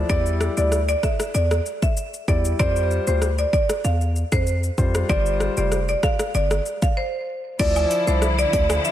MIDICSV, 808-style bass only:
0, 0, Header, 1, 2, 480
1, 0, Start_track
1, 0, Key_signature, -1, "minor"
1, 0, Tempo, 625000
1, 74, Time_signature, 4, 2, 24, 8
1, 6847, End_track
2, 0, Start_track
2, 0, Title_t, "808-style bass"
2, 0, Program_c, 0, 38
2, 74, Note_on_c, 0, 40, 100
2, 377, Note_off_c, 0, 40, 0
2, 441, Note_on_c, 0, 38, 83
2, 732, Note_off_c, 0, 38, 0
2, 1033, Note_on_c, 0, 40, 103
2, 1232, Note_off_c, 0, 40, 0
2, 1752, Note_on_c, 0, 40, 91
2, 1951, Note_off_c, 0, 40, 0
2, 1993, Note_on_c, 0, 41, 105
2, 2297, Note_off_c, 0, 41, 0
2, 2360, Note_on_c, 0, 38, 89
2, 2652, Note_off_c, 0, 38, 0
2, 2953, Note_on_c, 0, 40, 100
2, 3257, Note_off_c, 0, 40, 0
2, 3320, Note_on_c, 0, 41, 94
2, 3612, Note_off_c, 0, 41, 0
2, 3671, Note_on_c, 0, 41, 89
2, 3870, Note_off_c, 0, 41, 0
2, 3912, Note_on_c, 0, 31, 101
2, 4217, Note_off_c, 0, 31, 0
2, 4281, Note_on_c, 0, 29, 91
2, 4573, Note_off_c, 0, 29, 0
2, 4874, Note_on_c, 0, 31, 103
2, 5072, Note_off_c, 0, 31, 0
2, 5833, Note_on_c, 0, 38, 105
2, 6032, Note_off_c, 0, 38, 0
2, 6201, Note_on_c, 0, 36, 87
2, 6492, Note_off_c, 0, 36, 0
2, 6553, Note_on_c, 0, 38, 93
2, 6751, Note_off_c, 0, 38, 0
2, 6847, End_track
0, 0, End_of_file